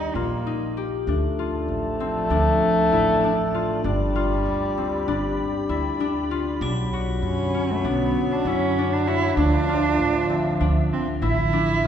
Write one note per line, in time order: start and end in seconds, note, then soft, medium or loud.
0.00 0.77 G3 medium
0.00 0.17 D#4 medium
0.00 0.46 D#4 medium
0.00 0.77 G4 medium
0.15 1.04 A#1 medium
0.15 0.85 A#3 medium
0.15 1.38 F4 medium
0.47 1.14 D#4 medium
0.77 3.12 G4 medium
1.06 1.65 D2 medium
1.06 3.81 F3 medium
1.06 3.81 A3 loud
1.06 2.30 D4 medium
1.06 6.57 D5 medium
1.06 3.81 A5 medium
1.39 2.99 F4 medium
1.68 2.26 A1 medium
2.00 4.77 C4 medium
2.30 2.59 D2 medium
2.30 3.23 D4 medium
2.92 3.81 A1 medium
2.92 3.60 E4 medium
3.24 3.85 D4 medium
3.54 4.15 F4 medium
3.84 4.42 G1 loud
3.84 6.30 G3 medium
3.84 5.07 D4 medium
3.84 6.59 G4 medium
3.84 9.34 B5 medium
4.16 5.75 F4 medium
4.46 5.03 D2 medium
4.78 7.60 C4 medium
5.08 5.36 G1 medium
5.08 6.00 D4 medium
5.69 6.58 D2 medium
5.69 6.37 E4 medium
6.00 6.61 D4 medium
6.31 6.99 F4 medium
6.61 7.19 B1 loud
6.61 11.87 D3 medium
6.61 9.40 F#3 medium
6.61 7.60 D4 medium
6.61 9.35 C#5 medium
6.61 8.91 G#7 soft
6.93 9.07 F#4 medium
7.22 7.80 F#2 medium
7.22 7.73 C#4 medium
7.54 7.91 C#4 medium
7.71 7.88 A3 medium
7.84 8.13 B1 medium
7.84 8.34 B3 medium
7.84 8.78 D4 medium
8.32 8.48 D4 medium
8.45 9.34 F#2 medium
8.45 8.94 C#4 loud
8.45 9.75 E4 medium
8.78 9.38 D4 medium
8.93 9.09 D4 medium
9.07 9.37 E4 loud
9.07 9.75 F#4 medium
9.37 9.95 D2 loud
9.37 11.84 F3 medium
9.37 11.87 F3 medium
9.37 10.87 D4 loud
9.37 10.60 D4 medium
9.37 11.87 E5 medium
9.69 11.28 F4 medium
9.99 10.57 A1 medium
10.29 11.87 C4 medium
10.61 10.89 D2 medium
10.61 11.53 D4 medium
10.92 11.06 C4 medium
11.22 11.87 A1 medium
11.22 11.87 E4 medium
11.22 11.87 E4 loud
11.53 11.87 D4 medium
11.84 11.87 F3 medium